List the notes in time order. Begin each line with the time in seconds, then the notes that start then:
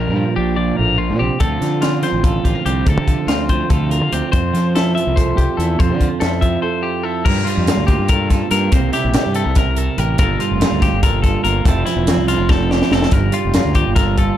Already playing: A#2 F3 D4 A#4
0.07 G2
0.16 F3
0.36 A#1 D4 G4
0.56 F3 D5
0.77 A#1 A2 A#4
0.98 A#2 F4
1.10 A#2
1.19 A#1 C3 G4
1.40 D2 D3 F3 C4 F4 A4, kick, closed hi-hat
1.61 D3 F3, snare, closed hi-hat
1.81 C4 F4, snare, closed hi-hat
2.02 F3 C5, snare, closed hi-hat
2.13 A1
2.23 F4 A4, kick, closed hi-hat
2.44 A1 F4 G4, kick, closed hi-hat
2.55 A#4
2.66 C2 C4 G4, closed hi-hat
2.86 D2 D3 A4, kick, closed hi-hat
2.98 C3
3.08 F3, kick, closed hi-hat
3.27 D2 C4 F4, snare, closed hi-hat
3.49 F3 C5, kick, closed hi-hat
3.70 D2 F4 A4, kick, closed hi-hat
3.90 F4 A#4, closed hi-hat
4.02 D3
4.12 D2 C4 G4, closed hi-hat
4.32 F2 C5, kick, closed hi-hat
4.53 F3, snare, closed hi-hat
4.75 E4 A4, snare, closed hi-hat
4.95 F3 E5, closed hi-hat
5.07 C2
5.16 A4 C5, kick, closed hi-hat
5.37 C2 G4 C5, kick, closed hi-hat
5.57 E2 E4 A4, closed hi-hat
5.79 F2 C5, kick, closed hi-hat
5.89 D3
6.00 F3, kick, closed hi-hat
6.20 F2 E4 A4, snare, closed hi-hat
6.41 F3 E5, kick, closed hi-hat
6.62 A4 C5
6.83 G4 C5
7.03 E4 A4
7.25 G2 A#4, kick, crash
7.45 G3 F4, closed hi-hat
7.57 F2
7.67 G3 A#3, snare, closed hi-hat
7.77 D2
7.87 F4 G4, kick, closed hi-hat
7.99 G2
8.09 A4 A#4, kick, closed hi-hat
8.29 F4 A4, kick, snare, closed hi-hat
8.51 G2 A#3 A#4, snare, closed hi-hat
8.71 C2 C3 C5, kick, closed hi-hat
8.92 E4 G4, snare, closed hi-hat
9.04 A#1
9.14 C3 G4, snare, closed hi-hat
9.26 G2
9.33 G4 A4, closed hi-hat
9.44 C2 A#4
9.55 A#4, kick, snare, closed hi-hat
9.77 A4 A#4, closed hi-hat
9.98 A1 G4 A#4, closed hi-hat
10.18 G1 G2 G3 A#3 F4 A#4, kick, closed hi-hat
10.23 A4
10.40 G3 F4, closed hi-hat
10.51 F1
10.61 G2 A#3, snare, closed hi-hat
10.72 D2
10.82 F4 G4, kick, snare, closed hi-hat
10.92 G1
11.03 A4 A#4, kick, closed hi-hat
11.22 F4 A4, kick, closed hi-hat
11.44 G1 A#3 A#4, closed hi-hat
11.64 F1 F2 F3 C4 E4 A4, kick, closed hi-hat
11.69 A4
11.86 F3 E4, snare, closed hi-hat
11.96 E1
12.07 F2 C4, snare, closed hi-hat
12.17 C2
12.28 D4 F4, snare, closed hi-hat
12.38 F1 E4
12.49 A4 C5, kick, snare
12.71 D4 G4, snare
12.82 E4, snare
12.91 F1 C4 A4, snare
13.02 snare
13.11 G1 G2 A#4, kick, closed hi-hat
13.32 G3 F4, closed hi-hat
13.45 F1
13.54 G2 A#3, snare, closed hi-hat
13.65 D2
13.75 F4 G4, kick, closed hi-hat
13.87 G1
13.96 A4 A#4, kick, snare, closed hi-hat
14.18 F4 A4, kick, closed hi-hat